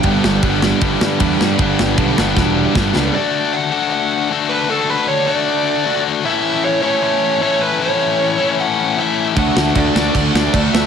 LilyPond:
<<
  \new Staff \with { instrumentName = "Lead electric guitar" } { \time 4/4 \key d \major \tempo 4 = 154 r1 | r1 | d''4 fis''4 fis''4 r8 b'8 | a'8 b'8 cis''8 d''2 r8 |
e''4 cis''8 cis''8 cis''4 cis''8 b'8 | cis''2 fis''4 e''8. r16 | fis''4 d''4 d''4 d''8 e''8 | }
  \new Staff \with { instrumentName = "Distorted electric guitar" } { \time 4/4 \key d \major <g, d g b d'>4 <g, d g b d'>8 <g, d g b d'>8 <g, d g b d'>4 <g, d g b d'>8 <g, d g b d'>8 | <g, d g b d'>4 <g, d g b d'>8 <g, d g b d'>8 <g, d g b d'>4 <g, d g b d'>8 <g, d g b d'>8 | <d a d' fis' a'>4. <d a d' fis' a'>4. <d a d' fis' a'>4 | <d a d' fis' a'>4. <d a d' fis' a'>4. <d a d' fis' a'>4 |
<a, e a cis' e' a'>4. <a, e a cis' e' a'>4. <a, e a cis' e' a'>4 | <a, e a cis' e' a'>4. <a, e a cis' e' a'>4. <a, e a cis' e' a'>4 | <d a d' fis' a'>4. <d a d' fis' a'>4. <d a d' fis' a'>4 | }
  \new Staff \with { instrumentName = "Distorted electric guitar" } { \clef bass \time 4/4 \key d \major <g, d g>4 <g, d g>8 <g, d g>8 <g, d g>4 <g, d g>8 <g, d g>8 | <g, d g>4 <g, d g>8 <g, d g>8 <g, d g>4 <g, d g>8 <g, d g>8 | r1 | r1 |
r1 | r1 | <d a d'>8 <d a d'>8 <d a d'>8 <d a d'>8 <d a d'>8 <d a d'>8 <d a d'>8 <d a d'>8 | }
  \new Staff \with { instrumentName = "Overdriven electric guitar" } { \clef bass \time 4/4 \key d \major <g, d g>4 <g, d g>8 <g, d g>8 <g, d g>4 <g, d g>8 <g, d g>8 | <g, d g>4 <g, d g>8 <g, d g>8 <g, d g>4 <g, d g>8 <g, d g>8 | r1 | r1 |
r1 | r1 | <d a d'>2 <d a d'>2 | }
  \new Staff \with { instrumentName = "Picked electric bass" } { \clef bass \time 4/4 \key d \major g,,8 g,,8 g,,4 g,,8 g,8 e,8 g,8 | g,,8 g,,8 b,,8 g,,8 e,,4 g,,8 cis,8 | r1 | r1 |
r1 | r1 | d,8 d,8 d,8 d,8 d,8 d,8 d,8 d,8 | }
  \new DrumStaff \with { instrumentName = "Drums" } \drummode { \time 4/4 <bd cymr>8 sn8 <bd cymr>8 sn8 <bd cymr>8 sn8 <bd cymr>8 sn8 | <bd cymr>8 sn8 <bd cymr>8 sn8 <bd sn>4 <bd sn>8 sn8 | r4 r4 r4 r4 | r4 r4 r4 r4 |
r4 r4 r4 r4 | r4 r4 r4 r4 | <cymc bd>8 sn8 <cymc bd>8 sn8 <cymc bd>8 sn8 <cymc bd>8 sn8 | }
>>